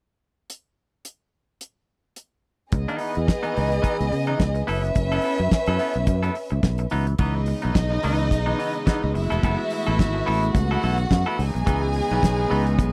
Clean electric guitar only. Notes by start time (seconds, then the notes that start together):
2.73 muted clean electric guitar stroke
2.88 E3 B3 D#4
3.00 E3 B3 D#4
3.16 muted clean electric guitar stroke
3.28 muted clean electric guitar stroke
3.43 E3 B3 D#4
3.54 E3 B3 D#4
3.70 muted clean electric guitar stroke
3.82 E3 B3 D#4
3.98 muted clean electric guitar stroke
4.11 muted clean electric guitar stroke
4.27 E3 B3 D#4
4.55 muted clean electric guitar stroke
4.67 B3 E4 A4
4.83 muted clean electric guitar stroke
4.95 muted clean electric guitar stroke
5.12 B3 E4 A4
5.23 B3 E4 A4
5.40 muted clean electric guitar stroke
5.52 muted clean electric guitar stroke
5.68 B3 E4 A4
5.79 B3 E4 A4
5.95 muted clean electric guitar stroke
6.07 muted clean electric guitar stroke
6.23 B3 E4 A4
6.35 muted clean electric guitar stroke
6.50 muted clean electric guitar stroke
6.79 muted clean electric guitar stroke
6.91 E3 B3 D#4
7.07 muted clean electric guitar stroke
7.19 E3 B3 D#4
7.36 muted clean electric guitar stroke
7.48 muted clean electric guitar stroke
7.62 E3 B3 D#4
7.75 muted clean electric guitar stroke
7.91 muted clean electric guitar stroke
8.04 E3 B3 D#4
8.18 muted clean electric guitar stroke
8.31 muted clean electric guitar stroke
8.46 E3 B3 D#4
8.58 E3 B3 D#4
8.75 muted clean electric guitar stroke
8.86 E3 B3 D#4
9.03 muted clean electric guitar stroke
9.14 muted clean electric guitar stroke
9.30 B3 E4 A4
9.44 B3 E4 A4
9.58 muted clean electric guitar stroke
9.72 muted clean electric guitar stroke
9.87 B3 E4 A4
9.99 muted clean electric guitar stroke
10.14 muted clean electric guitar stroke
10.26 B3 E4 A4
10.43 muted clean electric guitar stroke
10.55 muted clean electric guitar stroke
10.71 B3 E4 A4
10.82 B3 E4 A4
10.98 muted clean electric guitar stroke
11.10 muted clean electric guitar stroke
11.26 B3 E4 A4
11.38 muted clean electric guitar stroke
11.54 muted clean electric guitar stroke
11.66 E3 B3 D#4
11.83 muted clean electric guitar stroke
11.96 muted clean electric guitar stroke
12.12 E3 B3 D#4
12.23 muted clean electric guitar stroke
12.39 muted clean electric guitar stroke
12.50 E3 B3 D#4
12.66 muted clean electric guitar stroke
12.78 muted clean electric guitar stroke